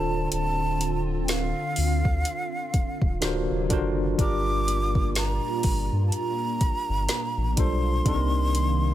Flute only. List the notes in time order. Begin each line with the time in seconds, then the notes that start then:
Already playing: A5
0.33 A5
1.24 G5
1.30 F5
4.21 D6
5.17 A#5
6.08 A5
6.14 A#5
7.59 C6